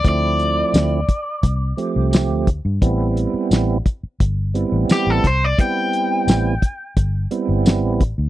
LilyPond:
<<
  \new Staff \with { instrumentName = "Overdriven electric guitar" } { \time 4/4 \key a \minor \tempo 4 = 87 d''2. r4 | r2. g'16 a'16 c''16 d''16 | g''2. r4 | }
  \new Staff \with { instrumentName = "Tonewheel organ" } { \time 4/4 \key a \minor <f a c' e'>4. r4 <f a c' g'>4 r8 | <g b c' e'>4. r4 <g b c' e'>4 r8 | <g b c' e'>4. r4 <g b c' e'>4 r8 | }
  \new Staff \with { instrumentName = "Fingered electric bass" } { \clef bass \time 4/4 \key a \minor d,4 d,8 r8 c,8 r16 c,8 d,8 g,16 | a,,8. r16 a,,8 r8 g,,8. a,,16 r16 a,,16 c,8 | r4 a,,8 r8 g,,8 r16 g,,8 a,,8 d,16 | }
  \new DrumStaff \with { instrumentName = "Drums" } \drummode { \time 4/4 <hh bd>8 hh8 <hh sn tamb>8 <hh bd>8 <hh bd>8 hh8 <hh sn tamb>8 <hh bd>8 | <hh bd>8 hh8 <hh sn tamb>8 <hh bd>8 <hh bd>8 hh8 <hh sn tamb>8 <hh bd sn>8 | <hh bd>8 hh8 <hh sn tamb>8 <hh bd>8 <hh bd>8 hh8 <hh sn tamb>8 <hh bd>8 | }
>>